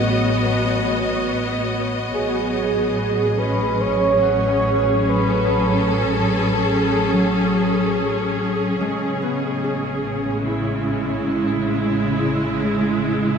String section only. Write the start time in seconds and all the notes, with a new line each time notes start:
Already playing: B3 F#4 C#5 D#5
2.16 F#3
2.79 G#4
3.36 C#4
5.13 A4
8.78 C#3
10.18 G#3
10.45 E4